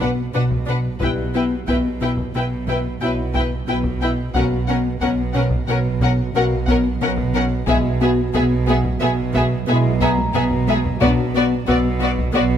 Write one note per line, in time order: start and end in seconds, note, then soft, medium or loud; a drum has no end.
0.00 0.27 B1 soft
0.00 0.27 B2 soft
0.00 0.22 B3 soft
0.00 0.10 B4 soft
0.00 0.31 D5 soft
0.00 0.09 F#5 soft
0.00 taiko medium
0.34 0.94 B1 soft
0.34 0.94 B2 soft
0.34 0.56 B2 medium
0.34 0.42 D4 soft
0.34 0.42 B4 soft
0.34 0.43 F#5 soft
0.51 taiko medium
0.67 0.89 B2 soft
0.67 0.75 D4 soft
0.67 0.78 B4 soft
0.67 0.77 F#5 soft
1.01 1.61 B1 soft
1.01 1.60 B2 soft
1.01 1.22 B2 medium
1.01 1.25 G3 soft
1.01 1.25 E4 soft
1.01 1.09 E4 soft
1.01 2.98 G4 soft
1.01 1.09 B4 soft
1.01 1.11 G5 soft
1.01 2.98 F#6 soft
1.01 taiko medium
1.35 1.55 B3 medium
1.35 1.43 E4 soft
1.35 1.43 B4 soft
1.35 1.44 G5 soft
1.68 2.27 B1 soft
1.68 2.27 B2 soft
1.68 1.88 B3 medium
1.68 1.76 E4 soft
1.68 1.78 B4 soft
1.68 1.76 G5 soft
1.68 taiko medium
2.01 2.21 B2 medium
2.01 2.10 E4 soft
2.01 2.11 B4 soft
2.01 2.10 G5 soft
2.18 taiko medium
2.35 2.94 B1 soft
2.35 2.94 B2 soft
2.35 2.55 B2 soft
2.35 2.43 E4 soft
2.35 2.45 B4 soft
2.35 2.45 G5 soft
2.67 2.88 B2 medium
2.67 2.76 E4 soft
2.67 2.79 B4 soft
2.67 2.77 G5 soft
2.67 taiko medium
3.01 3.60 B1 medium
3.01 3.21 B2 medium
3.01 3.60 B2 soft
3.01 3.25 F#3 soft
3.01 3.10 E4 soft
3.01 3.25 E4 soft
3.01 3.13 B4 soft
3.01 3.09 G5 soft
3.34 3.54 B3 soft
3.34 3.42 E4 soft
3.34 3.43 G5 soft
3.34 taiko medium
3.39 3.47 B4 soft
3.68 4.27 B1 soft
3.68 3.88 B2 medium
3.68 4.27 B2 soft
3.68 3.76 E4 soft
3.68 3.78 B4 soft
3.68 3.76 G5 soft
3.84 taiko medium
4.01 4.21 B2 soft
4.01 4.10 E4 soft
4.01 4.11 B4 soft
4.01 4.09 G5 soft
4.34 4.94 B1 soft
4.34 4.93 B2 medium
4.34 4.55 B2 medium
4.34 4.58 A#3 soft
4.34 4.44 C#4 soft
4.34 4.58 F#4 soft
4.34 4.45 A#4 soft
4.34 4.43 F#5 soft
4.34 taiko medium
4.68 4.88 B3 medium
4.68 4.77 C#4 soft
4.68 4.78 A#4 soft
4.68 4.76 F#5 soft
5.00 5.60 B1 soft
5.00 5.60 B2 soft
5.00 5.22 B3 medium
5.00 5.10 C#4 soft
5.00 5.10 A#4 soft
5.00 5.08 F#5 soft
5.00 taiko medium
5.34 5.55 B2 medium
5.34 5.43 C#4 soft
5.34 5.45 A#4 soft
5.34 5.42 F#5 soft
5.50 taiko medium
5.68 6.27 B1 medium
5.68 6.27 B2 soft
5.68 5.88 B2 medium
5.68 5.77 C#4 soft
5.68 5.78 A#4 soft
5.68 5.76 F#5 soft
6.00 6.21 B2 medium
6.00 6.10 C#4 soft
6.00 6.12 A#4 soft
6.00 6.10 F#5 soft
6.00 taiko medium
6.34 6.94 B1 medium
6.34 6.55 B2 medium
6.34 6.94 B2 medium
6.34 6.58 A#3 medium
6.34 6.43 C#4 soft
6.34 6.58 F#4 soft
6.34 6.44 A#4 soft
6.34 6.44 F#5 soft
6.67 6.88 B3 medium
6.67 6.76 C#4 soft
6.67 6.78 A#4 soft
6.67 6.76 F#5 soft
6.67 taiko medium
7.01 7.61 B1 medium
7.01 7.21 B2 medium
7.01 7.60 B2 medium
7.01 7.10 C#4 soft
7.01 7.11 A#4 soft
7.01 7.10 F#5 soft
7.18 taiko medium
7.34 7.54 B2 soft
7.34 7.43 C#4 soft
7.34 7.42 A#4 soft
7.34 7.43 F#5 soft
7.67 8.27 B1 medium
7.67 7.88 B2 medium
7.67 8.27 B2 medium
7.67 7.91 G#3 soft
7.67 7.76 B3 soft
7.67 7.91 E4 soft
7.67 7.76 G#4 medium
7.67 7.77 E5 medium
7.67 taiko medium
8.01 8.21 B3 medium
8.01 8.09 B3 soft
8.01 9.98 F#4 soft
8.01 8.10 G#4 soft
8.01 8.10 E5 soft
8.01 9.97 F#5 soft
8.34 8.94 B1 medium
8.34 8.93 B2 medium
8.34 8.42 B3 soft
8.34 8.55 B3 medium
8.34 8.43 G#4 soft
8.34 8.43 E5 medium
8.34 taiko medium
8.67 8.88 B2 medium
8.67 8.75 B3 medium
8.67 8.77 G#4 soft
8.67 8.77 E5 soft
8.84 taiko medium
9.01 9.61 B1 medium
9.01 9.60 B2 medium
9.01 9.21 B2 medium
9.01 9.09 B3 medium
9.01 9.11 G#4 soft
9.01 9.09 E5 medium
9.34 9.55 B2 medium
9.34 9.42 B3 medium
9.34 9.45 G#4 medium
9.34 9.43 E5 medium
9.34 taiko medium
9.67 10.27 B1 medium
9.67 9.87 B2 medium
9.67 10.27 B2 medium
9.67 9.92 G#3 medium
9.67 9.76 B3 soft
9.67 9.92 E4 medium
9.67 9.77 G#4 medium
9.67 9.76 E5 medium
10.00 10.20 B3 medium
10.00 10.10 B3 medium
10.00 10.10 G#4 medium
10.00 10.09 E5 medium
10.00 11.98 A#5 medium
10.00 taiko medium
10.18 taiko high medium
10.34 10.94 B1 medium
10.34 10.93 B2 medium
10.34 10.54 B2 medium
10.34 10.43 B3 medium
10.34 10.43 G#4 soft
10.34 10.43 E5 soft
10.34 taiko low-mid medium
10.51 taiko low-mid medium
10.67 10.88 B2 medium
10.67 10.76 B3 medium
10.67 10.78 G#4 soft
10.67 10.77 E5 medium
10.67 taiko high medium
10.85 taiko low medium
11.01 11.61 B1 medium
11.01 11.21 B2 medium
11.01 11.60 B2 medium
11.01 11.25 F#3 medium
11.01 11.09 B3 medium
11.01 11.25 D4 medium
11.01 11.10 F#4 medium
11.01 11.09 D5 medium
11.01 taiko medium
11.34 11.55 B3 medium
11.34 11.43 B3 medium
11.34 11.44 F#4 medium
11.34 11.44 D5 medium
11.67 12.27 B1 medium
11.67 12.27 B2 medium
11.67 11.76 B3 medium
11.67 11.88 B3 medium
11.67 11.75 F#4 medium
11.67 11.78 D5 medium
11.67 12.58 E6 medium
11.67 taiko medium
12.01 12.21 B2 medium
12.01 12.09 B3 medium
12.01 12.09 F#4 medium
12.01 12.11 D5 medium
12.18 taiko medium
12.33 12.58 B1 medium
12.33 12.58 B2 medium
12.33 12.55 B2 medium
12.33 12.41 B3 medium
12.33 12.43 F#4 medium
12.33 12.43 D5 medium